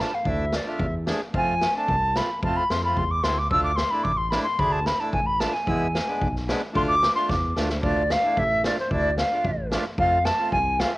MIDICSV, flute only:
0, 0, Header, 1, 2, 480
1, 0, Start_track
1, 0, Tempo, 540541
1, 225, Time_signature, 2, 2, 24, 8
1, 9748, End_track
2, 0, Start_track
2, 0, Title_t, "Flute"
2, 0, Program_c, 0, 73
2, 2, Note_on_c, 0, 81, 80
2, 128, Note_on_c, 0, 77, 83
2, 141, Note_off_c, 0, 81, 0
2, 257, Note_on_c, 0, 76, 86
2, 270, Note_off_c, 0, 77, 0
2, 496, Note_on_c, 0, 74, 77
2, 509, Note_off_c, 0, 76, 0
2, 610, Note_on_c, 0, 76, 73
2, 623, Note_off_c, 0, 74, 0
2, 840, Note_off_c, 0, 76, 0
2, 1214, Note_on_c, 0, 80, 100
2, 1541, Note_off_c, 0, 80, 0
2, 1570, Note_on_c, 0, 81, 97
2, 1925, Note_on_c, 0, 83, 82
2, 1938, Note_off_c, 0, 81, 0
2, 2156, Note_off_c, 0, 83, 0
2, 2161, Note_on_c, 0, 81, 95
2, 2279, Note_on_c, 0, 83, 100
2, 2292, Note_off_c, 0, 81, 0
2, 2409, Note_on_c, 0, 84, 89
2, 2422, Note_off_c, 0, 83, 0
2, 2524, Note_off_c, 0, 84, 0
2, 2528, Note_on_c, 0, 83, 84
2, 2644, Note_on_c, 0, 84, 82
2, 2658, Note_off_c, 0, 83, 0
2, 2762, Note_on_c, 0, 86, 99
2, 2775, Note_off_c, 0, 84, 0
2, 2872, Note_on_c, 0, 84, 89
2, 2885, Note_off_c, 0, 86, 0
2, 3003, Note_on_c, 0, 86, 85
2, 3016, Note_off_c, 0, 84, 0
2, 3110, Note_off_c, 0, 86, 0
2, 3115, Note_on_c, 0, 88, 111
2, 3224, Note_off_c, 0, 88, 0
2, 3230, Note_on_c, 0, 86, 99
2, 3339, Note_on_c, 0, 84, 91
2, 3352, Note_off_c, 0, 86, 0
2, 3468, Note_on_c, 0, 83, 87
2, 3481, Note_off_c, 0, 84, 0
2, 3584, Note_on_c, 0, 86, 90
2, 3597, Note_off_c, 0, 83, 0
2, 3705, Note_on_c, 0, 84, 94
2, 3718, Note_off_c, 0, 86, 0
2, 3825, Note_on_c, 0, 83, 88
2, 3838, Note_off_c, 0, 84, 0
2, 3930, Note_off_c, 0, 83, 0
2, 3936, Note_on_c, 0, 84, 89
2, 4078, Note_on_c, 0, 83, 90
2, 4091, Note_off_c, 0, 84, 0
2, 4194, Note_on_c, 0, 81, 93
2, 4207, Note_off_c, 0, 83, 0
2, 4323, Note_on_c, 0, 83, 83
2, 4336, Note_off_c, 0, 81, 0
2, 4441, Note_on_c, 0, 81, 86
2, 4455, Note_off_c, 0, 83, 0
2, 4550, Note_off_c, 0, 81, 0
2, 4556, Note_on_c, 0, 80, 77
2, 4674, Note_on_c, 0, 83, 89
2, 4688, Note_off_c, 0, 80, 0
2, 4797, Note_on_c, 0, 81, 77
2, 4810, Note_off_c, 0, 83, 0
2, 4916, Note_on_c, 0, 80, 70
2, 4929, Note_off_c, 0, 81, 0
2, 5637, Note_off_c, 0, 80, 0
2, 6004, Note_on_c, 0, 84, 100
2, 6056, Note_off_c, 0, 84, 0
2, 6106, Note_on_c, 0, 86, 124
2, 6334, Note_off_c, 0, 86, 0
2, 6351, Note_on_c, 0, 84, 95
2, 6477, Note_on_c, 0, 86, 82
2, 6491, Note_off_c, 0, 84, 0
2, 6716, Note_off_c, 0, 86, 0
2, 6955, Note_on_c, 0, 74, 98
2, 7203, Note_on_c, 0, 77, 107
2, 7216, Note_off_c, 0, 74, 0
2, 7446, Note_on_c, 0, 76, 103
2, 7460, Note_off_c, 0, 77, 0
2, 7678, Note_off_c, 0, 76, 0
2, 7690, Note_on_c, 0, 74, 92
2, 7792, Note_off_c, 0, 74, 0
2, 7809, Note_on_c, 0, 72, 74
2, 7911, Note_off_c, 0, 72, 0
2, 7931, Note_on_c, 0, 74, 110
2, 8143, Note_off_c, 0, 74, 0
2, 8155, Note_on_c, 0, 77, 95
2, 8596, Note_off_c, 0, 77, 0
2, 8878, Note_on_c, 0, 77, 108
2, 9105, Note_on_c, 0, 81, 96
2, 9119, Note_off_c, 0, 77, 0
2, 9340, Note_off_c, 0, 81, 0
2, 9346, Note_on_c, 0, 80, 99
2, 9590, Note_on_c, 0, 77, 86
2, 9604, Note_off_c, 0, 80, 0
2, 9705, Note_off_c, 0, 77, 0
2, 9710, Note_on_c, 0, 76, 72
2, 9748, Note_off_c, 0, 76, 0
2, 9748, End_track
0, 0, End_of_file